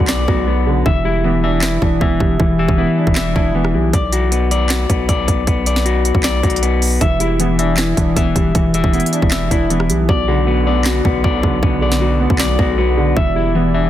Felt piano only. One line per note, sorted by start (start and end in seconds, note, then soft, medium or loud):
0.00 0.28 B2 medium
0.00 0.67 D3 medium
0.00 0.47 F#3 medium
0.00 0.28 B3 medium
0.28 0.86 B3 medium
0.47 0.86 F#3 medium
0.67 0.86 D3 medium
0.86 1.82 E3 medium
1.04 2.01 G3 medium
1.24 2.00 B3 medium
1.44 1.80 D4 medium
1.82 2.78 D4 medium
2.01 2.77 B3 medium
2.21 2.57 G3 medium
2.39 3.36 E3 medium
2.58 3.55 G3 medium
2.78 3.54 B3 medium
2.98 3.34 D4 medium
3.36 3.93 D4 medium
3.55 3.93 B3 medium
3.74 3.94 G3 medium
7.01 7.97 E3 medium
7.20 8.16 G3 medium
7.40 8.15 B3 medium
7.59 7.96 D4 medium
7.97 8.93 D4 medium
8.17 8.92 B3 medium
8.36 8.72 G3 medium
8.55 9.51 E3 medium
8.74 9.70 G3 medium
8.94 9.69 B3 medium
9.13 9.49 D4 medium
9.51 10.09 D4 medium
9.70 10.09 B3 medium
9.90 10.09 G3 medium
10.09 11.05 B2 medium
10.28 11.24 D3 medium
10.46 11.22 F#3 medium
10.66 11.03 B3 medium
11.05 12.01 B3 medium
11.24 12.00 F#3 medium
11.43 11.80 D3 medium
11.62 12.59 B2 medium
11.81 12.78 D3 medium
12.01 12.76 F#3 medium
12.20 12.57 B3 medium
12.59 13.16 B3 medium
12.78 13.16 F#3 medium
12.97 13.16 D3 medium
13.16 13.90 E3 loud
13.35 13.90 G3 medium
13.55 13.90 B3 medium
13.74 13.90 D4 medium